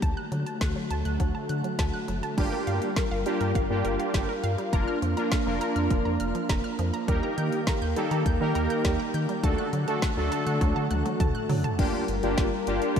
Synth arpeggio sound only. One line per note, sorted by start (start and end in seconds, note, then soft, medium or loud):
0.02 0.10 A5 loud
0.17 0.25 F#6 medium
0.32 0.39 F#3 medium
0.46 0.54 A5 medium
0.61 0.69 F#6 loud
0.76 0.83 F#3 medium
0.91 0.98 A5 medium
1.05 1.13 F#6 medium
1.20 1.28 F#3 medium
1.35 1.42 A5 medium
1.49 1.57 F#6 medium
1.64 1.72 F#3 medium
1.79 1.86 A5 medium
1.94 2.01 F#6 medium
2.08 2.16 F#3 medium
2.23 2.31 A5 medium
2.38 2.45 G3 medium
2.52 2.60 A#4 medium
2.67 2.75 F5 medium
2.97 3.04 A#4 medium
3.11 3.19 F5 medium
3.26 3.33 G3 medium
3.41 3.48 A#4 medium
3.55 3.63 F5 loud
3.70 3.78 G3 medium
3.85 3.92 A#4 medium
3.99 4.07 F5 medium
4.14 4.22 G3 medium
4.29 4.36 A#4 medium
4.43 4.51 F5 loud
4.58 4.66 G3 medium
4.73 4.80 A#5 loud
4.88 4.95 F6 medium
5.02 5.10 F3 medium
5.17 5.25 A#5 medium
5.32 5.39 F6 loud
5.46 5.54 F3 medium
5.61 5.69 A#5 medium
5.76 5.83 F6 medium
5.91 5.98 F3 medium
6.05 6.13 A#5 medium
6.20 6.28 F6 loud
6.35 6.42 F3 medium
6.49 6.57 A#5 medium
6.64 6.72 F6 medium
6.79 6.86 F3 medium
6.94 7.01 A#5 medium
7.08 7.16 G3 medium
7.23 7.31 A#5 medium
7.38 7.45 G6 loud
7.67 7.75 A#5 medium
7.82 7.89 G6 medium
7.97 8.04 G3 medium
8.11 8.19 A#5 medium
8.26 8.34 G6 loud
8.41 8.48 G3 medium
8.55 8.63 A#5 medium
8.70 8.78 G6 medium
8.85 8.92 G3 medium
9.00 9.07 A#5 medium
9.14 9.22 G6 loud
9.29 9.37 G3 medium
9.44 9.51 A5 loud
9.58 9.66 F#6 medium
9.73 9.81 F#3 medium
9.88 9.95 A5 medium
10.02 10.10 F#6 loud
10.17 10.25 F#3 medium
10.32 10.39 A5 medium
10.47 10.54 F#6 medium
10.61 10.69 F#3 medium
10.76 10.83 A5 medium
10.91 10.98 F#6 medium
11.05 11.13 F#3 medium
11.20 11.28 A5 medium
11.35 11.42 F#6 medium
11.49 11.57 F#3 medium
11.64 11.72 A5 medium